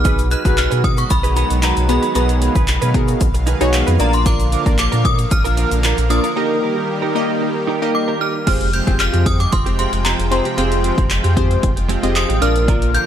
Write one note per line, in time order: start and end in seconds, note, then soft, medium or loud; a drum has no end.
0.00 0.35 B1 loud
0.00 0.31 B3 medium
0.00 0.31 D#4 medium
0.00 0.31 F#4 medium
0.00 0.31 G#4 medium
0.00 0.31 B4 medium
0.00 0.28 F6 loud
0.04 3.96 D#3 medium
0.04 3.96 F#3 medium
0.04 3.96 G#3 medium
0.04 3.96 B3 medium
0.04 0.26 D#4 medium
0.04 2.13 F#4 medium
0.04 0.26 G#4 medium
0.04 0.27 B4 medium
0.04 kick loud
0.04 closed hi-hat medium
0.04 shaker medium
0.19 closed hi-hat medium
0.19 shaker soft
0.30 0.45 D#4 medium
0.30 0.44 G#4 medium
0.30 0.43 B4 medium
0.30 0.56 F#6 loud
0.30 closed hi-hat medium
0.30 shaker medium
0.44 0.67 B1 loud
0.44 0.96 B3 medium
0.44 0.97 D#4 medium
0.44 0.56 D#4 soft
0.44 0.97 F#4 medium
0.44 0.56 G#4 medium
0.44 0.97 G#4 medium
0.44 0.57 B4 medium
0.44 0.97 B4 medium
0.44 kick loud
0.44 closed hi-hat medium
0.44 shaker medium
0.57 0.69 F6 medium
0.57 muted clean electric guitar stroke soft
0.57 clap loud
0.57 closed hi-hat medium
0.57 shaker medium
0.71 1.04 B2 medium
0.71 0.82 D#4 medium
0.71 0.83 G#4 medium
0.71 0.83 B4 medium
0.71 closed hi-hat medium
0.71 shaker medium
0.83 0.98 D#6 medium
0.83 muted clean electric guitar stroke soft
0.83 kick medium
0.83 closed hi-hat medium
0.97 1.04 C#6 medium
0.97 muted clean electric guitar stroke medium
0.97 closed hi-hat medium
0.97 shaker medium
1.10 1.44 B1 loud
1.10 1.22 B5 medium
1.10 muted clean electric guitar stroke soft
1.10 kick loud
1.10 closed hi-hat medium
1.10 shaker medium
1.23 1.35 D#4 medium
1.23 1.36 G#4 medium
1.23 1.36 B4 medium
1.23 closed hi-hat medium
1.23 shaker medium
1.36 1.58 D#4 medium
1.36 1.50 G#4 medium
1.36 1.49 B4 medium
1.36 1.61 B5 medium
1.36 closed hi-hat medium
1.36 shaker medium
1.50 1.73 B1 medium
1.50 muted clean electric guitar stroke soft
1.50 closed hi-hat medium
1.50 shaker medium
1.62 1.84 D#4 medium
1.62 1.76 G#4 medium
1.62 1.75 B4 loud
1.62 1.75 A#5 medium
1.62 clap loud
1.62 closed hi-hat medium
1.62 shaker medium
1.76 1.99 B1 loud
1.76 muted clean electric guitar stroke soft
1.76 closed hi-hat medium
1.76 shaker soft
1.89 2.03 B3 medium
1.89 2.03 D#4 medium
1.89 2.03 F#4 medium
1.89 2.03 G#4 medium
1.89 2.03 B4 medium
1.89 2.15 B5 medium
1.89 muted clean electric guitar stroke soft
1.89 closed hi-hat medium
1.89 shaker medium
2.02 2.13 D#4 medium
2.02 2.15 G#4 medium
2.02 2.15 B4 medium
2.02 closed hi-hat soft
2.02 shaker medium
2.15 2.49 B1 loud
2.15 2.55 B3 medium
2.15 2.36 D#4 medium
2.15 2.55 D#4 medium
2.15 2.55 F#4 medium
2.15 2.55 G#4 medium
2.15 2.37 G#4 medium
2.15 2.55 B4 medium
2.15 2.37 B4 medium
2.15 6.33 F5 loud
2.15 3.17 B5 medium
2.15 closed hi-hat medium
2.15 shaker medium
2.29 closed hi-hat medium
2.29 shaker soft
2.41 2.56 D#4 medium
2.41 2.55 G#4 medium
2.41 2.54 B4 medium
2.41 closed hi-hat medium
2.41 shaker medium
2.55 2.78 B1 medium
2.55 2.67 D#4 medium
2.55 2.67 G#4 medium
2.55 2.68 B4 medium
2.55 kick loud
2.55 closed hi-hat medium
2.55 shaker medium
2.68 muted clean electric guitar stroke medium
2.68 clap loud
2.68 closed hi-hat medium
2.68 shaker medium
2.82 3.15 B2 medium
2.82 2.93 D#4 medium
2.82 2.94 G#4 medium
2.82 2.94 B4 medium
2.82 closed hi-hat medium
2.82 shaker medium
2.94 3.27 B3 medium
2.94 3.27 D#4 medium
2.94 3.27 F#4 medium
2.94 3.27 G#4 medium
2.94 3.27 A#4 loud
2.94 muted clean electric guitar stroke medium
2.94 kick loud
2.94 closed hi-hat medium
3.08 muted clean electric guitar stroke soft
3.08 closed hi-hat medium
3.08 shaker medium
3.20 3.55 B1 loud
3.20 muted clean electric guitar stroke soft
3.20 kick medium
3.20 closed hi-hat loud
3.20 shaker medium
3.34 muted clean electric guitar stroke medium
3.34 closed hi-hat medium
3.34 shaker medium
3.46 3.68 D#4 medium
3.46 3.61 G#4 medium
3.46 3.59 B4 medium
3.46 closed hi-hat medium
3.46 shaker medium
3.61 3.83 B1 medium
3.61 3.93 B3 medium
3.61 3.93 D#4 medium
3.61 3.93 F#4 medium
3.61 3.93 G#4 medium
3.61 3.93 C#5 loud
3.61 muted clean electric guitar stroke soft
3.61 closed hi-hat medium
3.61 shaker medium
3.73 muted clean electric guitar stroke soft
3.73 clap loud
3.73 closed hi-hat medium
3.73 shaker medium
3.87 3.98 F2 loud
3.87 3.99 D#4 medium
3.87 4.00 G#4 medium
3.87 4.00 B4 medium
3.87 closed hi-hat medium
3.87 shaker soft
3.99 4.56 A#1 loud
3.99 6.34 D3 medium
3.99 6.34 F3 medium
3.99 4.52 A#3 medium
3.99 8.43 A#3 medium
3.99 4.17 D4 medium
3.99 4.52 D4 medium
3.99 4.52 F4 medium
3.99 4.13 F4 medium
3.99 8.43 A#4 medium
3.99 4.52 A#4 medium
3.99 4.12 A#4 medium
3.99 4.52 D5 medium
3.99 4.14 A#5 medium
3.99 closed hi-hat medium
3.99 shaker soft
4.13 4.27 C6 medium
4.13 muted clean electric guitar stroke medium
4.13 closed hi-hat soft
4.13 shaker medium
4.25 4.47 D4 medium
4.25 4.48 F4 medium
4.25 4.48 A#4 loud
4.25 4.78 D6 loud
4.25 kick loud
4.25 closed hi-hat medium
4.25 shaker medium
4.40 closed hi-hat medium
4.40 shaker soft
4.52 4.66 D4 medium
4.52 4.65 F4 medium
4.52 4.64 A#4 medium
4.52 closed hi-hat medium
4.52 shaker medium
4.66 4.88 A#1 loud
4.66 5.17 A#3 medium
4.66 5.17 D4 medium
4.66 4.77 D4 medium
4.66 5.17 F4 medium
4.66 4.78 F4 medium
4.66 4.78 A#4 medium
4.66 5.18 A#4 medium
4.66 5.18 D5 medium
4.66 kick loud
4.66 closed hi-hat medium
4.66 shaker medium
4.78 5.03 D6 loud
4.78 muted clean electric guitar stroke soft
4.78 clap loud
4.78 closed hi-hat medium
4.78 shaker medium
4.92 5.25 A#2 medium
4.92 5.03 D4 medium
4.92 5.04 F4 medium
4.92 5.05 A#4 medium
4.92 closed hi-hat medium
4.92 shaker medium
5.05 5.17 D#6 loud
5.05 kick loud
5.05 closed hi-hat medium
5.18 muted clean electric guitar stroke soft
5.18 closed hi-hat medium
5.18 shaker medium
5.31 5.65 A#1 loud
5.31 6.13 F6 loud
5.31 muted clean electric guitar stroke soft
5.31 kick loud
5.31 closed hi-hat medium
5.31 shaker medium
5.44 5.56 D4 medium
5.44 5.57 F4 medium
5.44 5.57 A#4 medium
5.44 closed hi-hat medium
5.44 shaker medium
5.57 5.79 D4 medium
5.57 5.71 F4 medium
5.57 5.70 A#4 loud
5.57 closed hi-hat medium
5.57 shaker medium
5.71 5.94 A#1 medium
5.71 muted clean electric guitar stroke medium
5.71 closed hi-hat medium
5.71 shaker medium
5.83 6.05 D4 medium
5.83 5.97 F4 medium
5.83 5.96 A#4 loud
5.83 clap loud
5.83 closed hi-hat medium
5.83 shaker medium
5.97 6.20 A#1 loud
5.97 muted clean electric guitar stroke soft
5.97 closed hi-hat medium
5.97 shaker soft
6.10 6.24 A#3 medium
6.10 6.24 D4 medium
6.10 6.24 F4 medium
6.10 6.24 A#4 medium
6.10 6.24 D5 medium
6.10 7.64 D#6 medium
6.10 muted clean electric guitar stroke soft
6.10 closed hi-hat medium
6.10 shaker medium
6.24 6.35 D4 medium
6.24 6.36 F4 medium
6.24 6.36 A#4 medium
6.24 closed hi-hat soft
6.24 shaker soft
6.36 8.45 D#3 medium
6.36 8.45 G3 medium
6.36 6.76 A#3 medium
6.36 6.58 D#4 medium
6.36 6.76 D#4 medium
6.36 6.76 G4 medium
6.36 8.45 G4 medium
6.36 6.58 G4 loud
6.36 6.76 A#4 medium
6.36 6.58 A#4 medium
6.36 6.76 D#5 medium
6.62 6.77 D#4 medium
6.62 6.76 G4 medium
6.62 6.75 A#4 medium
6.76 6.87 D#4 medium
6.76 6.88 G4 medium
6.76 6.89 A#4 medium
6.89 muted clean electric guitar stroke soft
7.02 7.14 D#4 medium
7.02 7.14 G4 medium
7.02 7.15 A#4 medium
7.15 7.48 A#3 medium
7.15 7.48 D#4 medium
7.15 7.48 G4 medium
7.15 7.48 A#4 medium
7.15 7.48 D#5 loud
7.15 muted clean electric guitar stroke soft
7.29 muted clean electric guitar stroke soft
7.41 muted clean electric guitar stroke soft
7.55 muted clean electric guitar stroke soft
7.67 7.89 D#4 medium
7.67 7.82 G4 medium
7.67 7.81 A#4 loud
7.82 8.14 A#3 medium
7.82 8.14 D#4 medium
7.82 8.14 G4 medium
7.82 8.14 A#4 medium
7.82 8.14 D#5 loud
7.82 muted clean electric guitar stroke soft
7.94 8.22 D6 medium
7.94 muted clean electric guitar stroke soft
8.08 8.19 D#4 medium
8.08 8.20 G4 medium
8.08 8.21 A#4 medium
8.20 8.38 D#4 medium
8.20 8.34 G4 medium
8.20 8.33 A#4 medium
8.20 8.33 F6 loud
8.34 muted clean electric guitar stroke medium
8.47 8.81 F1 loud
8.47 12.38 C3 medium
8.47 12.38 F3 medium
8.47 8.68 G#3 loud
8.47 12.38 G#3 medium
8.47 8.67 C4 medium
8.47 8.69 C4 medium
8.47 8.67 F4 medium
8.47 13.06 F4 medium
8.47 8.67 G4 medium
8.47 8.69 G4 loud
8.47 8.67 G#4 medium
8.47 8.67 C5 medium
8.47 12.38 G5 medium
8.47 8.72 F6 loud
8.47 kick loud
8.47 closed hi-hat medium
8.47 crash loud
8.61 closed hi-hat medium
8.73 8.88 G#3 medium
8.73 8.87 C4 medium
8.73 8.86 G4 medium
8.73 8.85 G6 loud
8.73 closed hi-hat medium
8.87 9.09 F1 loud
8.87 8.98 G#3 medium
8.87 9.38 C4 medium
8.87 8.99 C4 medium
8.87 9.39 F4 medium
8.87 9.00 G4 medium
8.87 9.39 G4 medium
8.87 9.39 G#4 medium
8.87 9.39 C5 medium
8.87 kick medium
8.87 closed hi-hat medium
9.00 9.12 F6 loud
9.00 muted clean electric guitar stroke soft
9.00 clap loud
9.00 closed hi-hat medium
9.13 9.46 F2 medium
9.13 9.25 G#3 medium
9.13 9.26 C4 medium
9.13 9.26 G4 loud
9.13 closed hi-hat medium
9.26 9.39 D#6 loud
9.26 muted clean electric guitar stroke soft
9.26 kick loud
9.26 closed hi-hat medium
9.40 9.52 D6 medium
9.40 muted clean electric guitar stroke medium
9.40 closed hi-hat medium
9.52 9.87 F1 loud
9.52 9.77 C6 medium
9.52 muted clean electric guitar stroke soft
9.52 kick medium
9.52 closed hi-hat loud
9.66 9.77 G#3 medium
9.66 9.78 C4 medium
9.66 9.79 G4 medium
9.66 closed hi-hat medium
9.78 10.00 G#3 medium
9.78 9.93 C4 medium
9.78 9.91 G4 medium
9.78 10.06 C6 medium
9.78 closed hi-hat medium
9.93 10.15 F1 medium
9.93 muted clean electric guitar stroke soft
9.93 closed hi-hat medium
10.05 10.26 G#3 medium
10.05 10.19 C4 medium
10.05 10.18 G4 loud
10.05 10.32 A#5 medium
10.05 clap loud
10.05 closed hi-hat medium
10.19 10.41 F1 loud
10.19 muted clean electric guitar stroke soft
10.19 closed hi-hat medium
10.31 10.45 C4 medium
10.31 10.45 F4 medium
10.31 10.45 G4 medium
10.31 10.45 G#4 medium
10.31 10.45 C5 medium
10.31 10.56 C6 medium
10.31 muted clean electric guitar stroke soft
10.31 closed hi-hat medium
10.45 10.56 G#3 medium
10.45 10.57 C4 medium
10.45 10.58 G4 medium
10.45 closed hi-hat soft
10.57 10.92 F1 loud
10.57 10.79 G#3 medium
10.57 10.97 C4 medium
10.57 10.79 C4 loud
10.57 10.97 F4 medium
10.57 10.97 G4 medium
10.57 10.80 G4 loud
10.57 10.97 G#4 medium
10.57 10.97 C5 medium
10.57 11.59 C6 medium
10.57 closed hi-hat medium
10.72 closed hi-hat medium
10.84 10.98 G#3 medium
10.84 10.97 C4 medium
10.84 10.96 G4 medium
10.84 closed hi-hat medium
10.98 11.20 F1 loud
10.98 11.09 G#3 medium
10.98 11.10 C4 medium
10.98 11.10 G4 medium
10.98 kick loud
10.98 closed hi-hat medium
11.10 muted clean electric guitar stroke soft
11.10 clap loud
11.10 closed hi-hat medium
11.24 11.57 F2 medium
11.24 11.35 G#3 medium
11.24 11.36 C4 medium
11.24 11.37 G4 medium
11.24 closed hi-hat medium
11.36 11.69 C4 medium
11.36 11.69 F4 medium
11.36 11.69 G4 medium
11.36 11.69 G#4 medium
11.36 11.69 C5 loud
11.36 muted clean electric guitar stroke soft
11.36 kick loud
11.36 closed hi-hat medium
11.50 muted clean electric guitar stroke soft
11.50 closed hi-hat medium
11.63 11.97 F1 loud
11.63 muted clean electric guitar stroke soft
11.63 kick medium
11.63 closed hi-hat medium
11.77 muted clean electric guitar stroke soft
11.77 closed hi-hat medium
11.89 12.10 G#3 medium
11.89 12.03 C4 medium
11.89 12.02 G4 loud
11.89 closed hi-hat medium
12.03 12.25 F1 medium
12.03 12.35 C4 medium
12.03 12.35 F4 medium
12.03 12.35 G4 medium
12.03 12.35 G#4 medium
12.03 12.35 D#5 medium
12.03 muted clean electric guitar stroke soft
12.03 closed hi-hat medium
12.16 12.40 D#6 loud
12.16 clap loud
12.16 closed hi-hat medium
12.29 12.40 A1 loud
12.29 12.51 G#3 medium
12.29 12.41 C4 medium
12.29 12.42 G4 medium
12.29 closed hi-hat medium
12.41 12.98 A#1 loud
12.41 13.06 D3 medium
12.41 13.06 F3 medium
12.41 12.94 A#3 medium
12.41 13.06 A#3 medium
12.41 12.59 D4 medium
12.41 12.94 D4 medium
12.41 12.94 F4 medium
12.41 12.55 F4 medium
12.41 12.94 A#4 medium
12.41 13.06 A#4 medium
12.41 12.54 A#4 medium
12.41 12.95 D5 medium
12.41 12.96 F6 loud
12.41 closed hi-hat medium
12.55 muted clean electric guitar stroke medium
12.55 closed hi-hat soft
12.67 12.89 D4 medium
12.67 12.90 F4 medium
12.67 12.90 A#4 loud
12.67 kick loud
12.67 closed hi-hat medium
12.82 closed hi-hat medium
12.94 13.06 D4 medium
12.94 13.06 F4 medium
12.94 13.06 A#4 medium
12.94 13.06 G6 loud
12.94 closed hi-hat medium